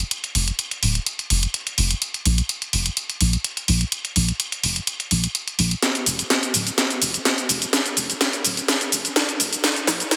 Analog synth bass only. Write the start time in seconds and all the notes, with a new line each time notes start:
0.35 F1
0.83 D1
1.30 F1
1.78 F1
2.26 A#1
2.73 F1
3.21 A#1
3.68 A#1
4.16 A#1
4.64 F1
5.11 A#1
5.59 A#1
6.07 F1
6.54 D1
7.02 F1
7.49 F1
7.97 F1
8.45 D1
8.92 F1
9.40 F1
9.87 A#1